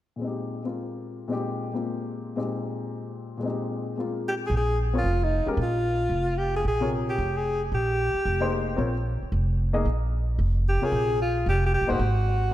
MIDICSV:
0, 0, Header, 1, 5, 480
1, 0, Start_track
1, 0, Tempo, 267499
1, 382, Time_signature, 4, 2, 24, 8
1, 22495, End_track
2, 0, Start_track
2, 0, Title_t, "Alto saxophone"
2, 0, Program_c, 0, 65
2, 7690, Note_on_c, 0, 67, 72
2, 7801, Note_off_c, 0, 67, 0
2, 8012, Note_on_c, 0, 68, 79
2, 8132, Note_off_c, 0, 68, 0
2, 8200, Note_on_c, 0, 68, 90
2, 8592, Note_off_c, 0, 68, 0
2, 8939, Note_on_c, 0, 65, 81
2, 9405, Note_on_c, 0, 63, 78
2, 9432, Note_off_c, 0, 65, 0
2, 9850, Note_off_c, 0, 63, 0
2, 10092, Note_on_c, 0, 65, 82
2, 11446, Note_on_c, 0, 67, 72
2, 11473, Note_off_c, 0, 65, 0
2, 11737, Note_off_c, 0, 67, 0
2, 11774, Note_on_c, 0, 68, 78
2, 11933, Note_off_c, 0, 68, 0
2, 11978, Note_on_c, 0, 68, 91
2, 12401, Note_off_c, 0, 68, 0
2, 12737, Note_on_c, 0, 67, 72
2, 13220, Note_on_c, 0, 68, 82
2, 13247, Note_off_c, 0, 67, 0
2, 13679, Note_off_c, 0, 68, 0
2, 13903, Note_on_c, 0, 67, 86
2, 15532, Note_off_c, 0, 67, 0
2, 19179, Note_on_c, 0, 67, 82
2, 19463, Note_on_c, 0, 68, 100
2, 19490, Note_off_c, 0, 67, 0
2, 20102, Note_off_c, 0, 68, 0
2, 20128, Note_on_c, 0, 65, 70
2, 20547, Note_off_c, 0, 65, 0
2, 20613, Note_on_c, 0, 67, 81
2, 20854, Note_off_c, 0, 67, 0
2, 20921, Note_on_c, 0, 67, 83
2, 21054, Note_off_c, 0, 67, 0
2, 21065, Note_on_c, 0, 67, 78
2, 21350, Note_on_c, 0, 66, 74
2, 21377, Note_off_c, 0, 67, 0
2, 22495, Note_off_c, 0, 66, 0
2, 22495, End_track
3, 0, Start_track
3, 0, Title_t, "Grand piano"
3, 0, Program_c, 1, 0
3, 288, Note_on_c, 1, 46, 37
3, 335, Note_on_c, 1, 56, 37
3, 386, Note_on_c, 1, 60, 34
3, 436, Note_on_c, 1, 63, 33
3, 488, Note_on_c, 1, 67, 39
3, 1108, Note_off_c, 1, 56, 0
3, 1134, Note_on_c, 1, 56, 28
3, 1142, Note_off_c, 1, 60, 0
3, 1166, Note_on_c, 1, 58, 28
3, 1169, Note_on_c, 1, 60, 32
3, 1183, Note_on_c, 1, 65, 37
3, 2260, Note_off_c, 1, 46, 0
3, 2278, Note_off_c, 1, 56, 0
3, 2294, Note_on_c, 1, 46, 47
3, 2296, Note_off_c, 1, 60, 0
3, 2305, Note_on_c, 1, 56, 44
3, 2312, Note_off_c, 1, 58, 0
3, 2321, Note_off_c, 1, 65, 0
3, 2322, Note_on_c, 1, 60, 42
3, 2326, Note_off_c, 1, 63, 0
3, 2353, Note_off_c, 1, 67, 0
3, 2353, Note_on_c, 1, 63, 44
3, 2380, Note_on_c, 1, 67, 55
3, 3057, Note_off_c, 1, 56, 0
3, 3084, Note_on_c, 1, 56, 33
3, 3104, Note_off_c, 1, 60, 0
3, 3113, Note_on_c, 1, 58, 33
3, 3131, Note_on_c, 1, 60, 29
3, 3141, Note_on_c, 1, 65, 38
3, 4210, Note_off_c, 1, 46, 0
3, 4222, Note_off_c, 1, 56, 0
3, 4224, Note_off_c, 1, 60, 0
3, 4232, Note_off_c, 1, 63, 0
3, 4237, Note_on_c, 1, 46, 43
3, 4241, Note_off_c, 1, 67, 0
3, 4248, Note_off_c, 1, 58, 0
3, 4249, Note_on_c, 1, 56, 41
3, 4251, Note_on_c, 1, 60, 44
3, 4258, Note_on_c, 1, 63, 37
3, 4262, Note_off_c, 1, 65, 0
3, 4268, Note_on_c, 1, 67, 44
3, 6028, Note_off_c, 1, 46, 0
3, 6055, Note_on_c, 1, 46, 45
3, 6072, Note_off_c, 1, 56, 0
3, 6099, Note_on_c, 1, 56, 43
3, 6126, Note_off_c, 1, 60, 0
3, 6153, Note_on_c, 1, 60, 38
3, 6170, Note_off_c, 1, 63, 0
3, 6175, Note_off_c, 1, 67, 0
3, 6198, Note_on_c, 1, 63, 45
3, 6246, Note_on_c, 1, 67, 45
3, 7088, Note_off_c, 1, 56, 0
3, 7115, Note_on_c, 1, 56, 37
3, 7123, Note_off_c, 1, 60, 0
3, 7133, Note_on_c, 1, 58, 33
3, 7149, Note_on_c, 1, 60, 33
3, 7168, Note_on_c, 1, 65, 42
3, 8030, Note_off_c, 1, 46, 0
3, 8079, Note_off_c, 1, 56, 0
3, 8088, Note_off_c, 1, 58, 0
3, 8096, Note_off_c, 1, 60, 0
3, 8101, Note_off_c, 1, 63, 0
3, 8105, Note_off_c, 1, 65, 0
3, 8125, Note_off_c, 1, 67, 0
3, 8856, Note_on_c, 1, 60, 51
3, 8856, Note_on_c, 1, 65, 47
3, 8871, Note_on_c, 1, 70, 46
3, 8877, Note_on_c, 1, 73, 53
3, 9025, Note_off_c, 1, 60, 0
3, 9025, Note_off_c, 1, 65, 0
3, 9033, Note_off_c, 1, 70, 0
3, 9036, Note_off_c, 1, 73, 0
3, 9806, Note_on_c, 1, 56, 58
3, 9807, Note_on_c, 1, 61, 48
3, 9821, Note_on_c, 1, 67, 55
3, 9837, Note_on_c, 1, 70, 67
3, 9981, Note_off_c, 1, 56, 0
3, 9982, Note_off_c, 1, 61, 0
3, 9989, Note_off_c, 1, 67, 0
3, 9997, Note_off_c, 1, 70, 0
3, 12216, Note_on_c, 1, 48, 59
3, 12222, Note_on_c, 1, 65, 51
3, 12236, Note_on_c, 1, 70, 50
3, 12237, Note_on_c, 1, 73, 61
3, 12848, Note_off_c, 1, 48, 0
3, 12851, Note_off_c, 1, 65, 0
3, 12859, Note_off_c, 1, 70, 0
3, 12859, Note_off_c, 1, 73, 0
3, 15078, Note_on_c, 1, 58, 60
3, 15087, Note_on_c, 1, 63, 57
3, 15100, Note_on_c, 1, 68, 57
3, 15103, Note_on_c, 1, 72, 66
3, 15718, Note_off_c, 1, 58, 0
3, 15723, Note_off_c, 1, 63, 0
3, 15728, Note_on_c, 1, 60, 57
3, 15729, Note_off_c, 1, 68, 0
3, 15731, Note_off_c, 1, 72, 0
3, 15740, Note_on_c, 1, 65, 47
3, 15745, Note_on_c, 1, 70, 48
3, 15755, Note_on_c, 1, 73, 57
3, 16008, Note_off_c, 1, 60, 0
3, 16014, Note_off_c, 1, 65, 0
3, 16016, Note_off_c, 1, 70, 0
3, 16021, Note_off_c, 1, 73, 0
3, 17463, Note_on_c, 1, 58, 66
3, 17472, Note_on_c, 1, 63, 58
3, 17479, Note_on_c, 1, 68, 64
3, 17481, Note_on_c, 1, 75, 68
3, 17648, Note_off_c, 1, 58, 0
3, 17653, Note_off_c, 1, 63, 0
3, 17656, Note_off_c, 1, 68, 0
3, 17657, Note_off_c, 1, 75, 0
3, 19406, Note_on_c, 1, 48, 50
3, 19418, Note_on_c, 1, 65, 51
3, 19427, Note_on_c, 1, 70, 49
3, 19428, Note_on_c, 1, 73, 57
3, 20036, Note_off_c, 1, 48, 0
3, 20042, Note_off_c, 1, 65, 0
3, 20046, Note_off_c, 1, 70, 0
3, 20047, Note_off_c, 1, 73, 0
3, 21303, Note_on_c, 1, 58, 64
3, 21318, Note_on_c, 1, 63, 57
3, 21331, Note_on_c, 1, 68, 59
3, 21332, Note_on_c, 1, 72, 68
3, 21481, Note_off_c, 1, 58, 0
3, 21489, Note_off_c, 1, 63, 0
3, 21495, Note_off_c, 1, 68, 0
3, 21496, Note_off_c, 1, 72, 0
3, 22495, End_track
4, 0, Start_track
4, 0, Title_t, "Upright bass"
4, 0, Program_c, 2, 32
4, 8071, Note_on_c, 2, 34, 70
4, 8989, Note_off_c, 2, 34, 0
4, 9037, Note_on_c, 2, 29, 66
4, 9757, Note_off_c, 2, 29, 0
4, 9996, Note_on_c, 2, 34, 75
4, 10913, Note_off_c, 2, 34, 0
4, 10936, Note_on_c, 2, 29, 70
4, 11863, Note_off_c, 2, 29, 0
4, 11925, Note_on_c, 2, 34, 64
4, 12838, Note_off_c, 2, 34, 0
4, 12888, Note_on_c, 2, 29, 70
4, 13799, Note_off_c, 2, 29, 0
4, 13848, Note_on_c, 2, 34, 67
4, 14564, Note_off_c, 2, 34, 0
4, 14811, Note_on_c, 2, 29, 67
4, 15720, Note_off_c, 2, 29, 0
4, 15759, Note_on_c, 2, 34, 66
4, 16477, Note_off_c, 2, 34, 0
4, 16723, Note_on_c, 2, 29, 73
4, 17634, Note_off_c, 2, 29, 0
4, 17683, Note_on_c, 2, 34, 68
4, 18592, Note_off_c, 2, 34, 0
4, 18637, Note_on_c, 2, 29, 70
4, 19352, Note_off_c, 2, 29, 0
4, 19593, Note_on_c, 2, 34, 72
4, 20503, Note_off_c, 2, 34, 0
4, 20567, Note_on_c, 2, 29, 72
4, 21153, Note_off_c, 2, 29, 0
4, 21196, Note_on_c, 2, 32, 47
4, 21335, Note_off_c, 2, 32, 0
4, 21346, Note_on_c, 2, 31, 56
4, 21495, Note_off_c, 2, 31, 0
4, 21518, Note_on_c, 2, 32, 72
4, 22420, Note_off_c, 2, 32, 0
4, 22495, End_track
5, 0, Start_track
5, 0, Title_t, "Muted upright bass strokes"
5, 9814, Note_on_c, 9, 29, 31
5, 9994, Note_off_c, 9, 29, 0
5, 14611, Note_on_c, 9, 29, 34
5, 14791, Note_off_c, 9, 29, 0
5, 16553, Note_on_c, 9, 29, 32
5, 16732, Note_off_c, 9, 29, 0
5, 22495, End_track
0, 0, End_of_file